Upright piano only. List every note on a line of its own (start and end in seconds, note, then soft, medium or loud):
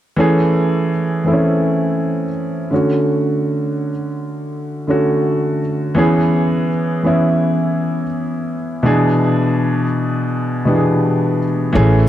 0.16 0.89 E3 loud
0.16 0.89 A3 medium
0.16 0.90 C#4 medium
0.16 0.90 G#4 loud
1.24 2.24 E3 medium
1.24 2.25 A3 medium
1.24 1.35 C4 medium
1.24 2.26 E4 medium
1.33 2.29 C#4 medium
2.71 3.89 D3 medium
2.71 3.89 A3 medium
2.71 3.90 C#4 medium
2.71 3.90 F#4 medium
4.87 5.59 D3 medium
4.87 5.60 A3 medium
4.87 5.60 C#4 medium
4.87 5.61 F#4 medium
5.95 6.67 E3 loud
5.95 6.67 B3 medium
5.95 6.68 C#4 medium
5.95 6.69 G#4 loud
7.03 8.03 E3 medium
7.03 8.03 B3 medium
7.03 8.04 C#4 medium
7.03 8.05 E4 medium
8.83 9.83 B2 medium
8.83 9.83 E3 medium
8.83 9.84 B3 medium
8.83 9.84 D4 medium
8.83 9.85 G#4 loud
10.65 11.37 B2 medium
10.65 11.38 E3 medium
10.65 11.38 B3 medium
10.65 11.38 D4 medium
10.65 10.76 G4 medium
10.75 11.42 G#4 medium
11.73 12.09 E3 loud
11.73 12.09 A3 medium
11.73 12.09 C#4 medium
11.73 12.09 G#4 loud